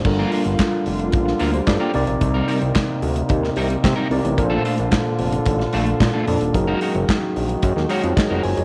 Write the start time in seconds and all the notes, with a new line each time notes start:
0.05 G1 D3 G3 A#3 D4 F4 A4 A#4, muted clean electric guitar stroke, kick, crash
0.19 A#3 D4 F4 A#4
0.32 A#3 D4 F4 A#4, open hi-hat
0.45 G1, muted clean electric guitar stroke, closed hi-hat
0.58 muted clean electric guitar stroke, kick, snare, clap, closed hi-hat
0.72 muted clean electric guitar stroke
0.86 F1, open hi-hat
0.99 muted clean electric guitar stroke, closed hi-hat
1.12 A#1, muted clean electric guitar stroke, kick, closed hi-hat
1.26 muted clean electric guitar stroke, snare
1.39 D2 A#3 D4 F4 A#4, open hi-hat
1.53 G4 C5, muted clean electric guitar stroke, closed hi-hat
1.67 G2 A4 D5, muted clean electric guitar stroke, kick, snare, clap, closed hi-hat
1.80 A#3 D4 F4 A#4 D5 G5
1.93 C2 C3 C4 D#4 A#4 D5, muted clean electric guitar stroke, open hi-hat
2.07 A#1, muted clean electric guitar stroke, closed hi-hat
2.21 C2, muted clean electric guitar stroke, kick, closed hi-hat
2.34 G3 C4 D#4 A#4
2.48 G3 C4 D#4 A#4, open hi-hat
2.61 C2, muted clean electric guitar stroke, closed hi-hat
2.75 kick, snare, clap, closed hi-hat
2.89 muted clean electric guitar stroke
3.02 D2, open hi-hat
3.15 muted clean electric guitar stroke, closed hi-hat
3.29 D#2, muted clean electric guitar stroke, kick, closed hi-hat
3.43 muted clean electric guitar stroke, snare
3.56 C2 G3 C4 D#4 A#4, open hi-hat
3.70 muted clean electric guitar stroke, closed hi-hat
3.83 C3, muted clean electric guitar stroke, kick, snare, clap, closed hi-hat
3.96 G3 C4 D#4 A#4
4.10 C2 C3 C4 D#4 A#4 D5, open hi-hat
4.24 A1, muted clean electric guitar stroke, closed hi-hat
4.37 A#1 A#2 D3 A#3 D4 F4 A4 A#4, muted clean electric guitar stroke, kick, closed hi-hat
4.45 C5
4.50 A3 D4 F4 A4
4.64 A3 D4 F4 A4, open hi-hat
4.78 A#1, muted clean electric guitar stroke, closed hi-hat
4.91 muted clean electric guitar stroke, kick, snare, clap, closed hi-hat
5.04 muted clean electric guitar stroke
5.19 F1, open hi-hat
5.32 muted clean electric guitar stroke, closed hi-hat
5.46 A1, muted clean electric guitar stroke, kick, closed hi-hat
5.59 muted clean electric guitar stroke, snare
5.73 A#1 A3 D4 F4 A4, open hi-hat
5.87 muted clean electric guitar stroke, closed hi-hat
6.00 A#2, muted clean electric guitar stroke, kick, snare, clap, closed hi-hat
6.14 A3 D4 F4 A4
6.27 F2 A#2 A#3 D4 A4 D5, muted clean electric guitar stroke, open hi-hat
6.41 D#1, muted clean electric guitar stroke, closed hi-hat
6.54 F#1 D#3 F#3 G#3 C#4 D#4 F#4 G#4 A#4, muted clean electric guitar stroke, kick, closed hi-hat
6.67 G#3 D#4 F#4 A#4
6.81 G#3 D#4 F#4 A#4, open hi-hat
6.94 F#1, muted clean electric guitar stroke, closed hi-hat
7.09 muted clean electric guitar stroke, kick, snare, clap, closed hi-hat
7.22 muted clean electric guitar stroke
7.36 A#1, open hi-hat
7.49 muted clean electric guitar stroke, closed hi-hat
7.62 F#2, muted clean electric guitar stroke, kick, closed hi-hat
7.76 D#2, muted clean electric guitar stroke, snare
7.89 G#3 D#4 F#4 A#4 C#5, open hi-hat
8.03 F2, muted clean electric guitar stroke, closed hi-hat
8.16 D#4 G#4 D#5, muted clean electric guitar stroke, kick, snare, clap, closed hi-hat
8.29 F1 G#3 D#4 F4 F#4 A#4
8.43 F#1 F#4 C5 G#5, open hi-hat
8.57 F1 G#4 C#5, muted clean electric guitar stroke, closed hi-hat